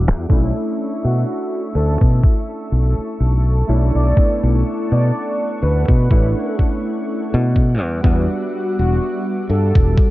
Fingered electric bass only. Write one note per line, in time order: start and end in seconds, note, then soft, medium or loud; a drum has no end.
0.08 0.27 E2 medium
0.30 0.52 B1 loud
1.05 1.23 B2 medium
1.75 1.97 D2 medium
2.01 2.20 B2 medium
2.72 2.94 B1 medium
2.98 muted fingered electric bass stroke soft
3.20 3.62 B1 medium
3.69 3.91 B1 medium
3.95 4.13 B1 medium
4.43 4.62 B1 medium
4.92 5.10 B2 medium
5.62 5.84 D2 medium
5.88 6.07 B2 medium
6.11 6.33 A1 medium
7.34 7.82 B2 loud
7.82 8.01 E2 medium
8.04 8.26 E2 loud
8.79 8.97 E1 medium
9.50 9.71 G2 medium
9.76 9.94 E1 medium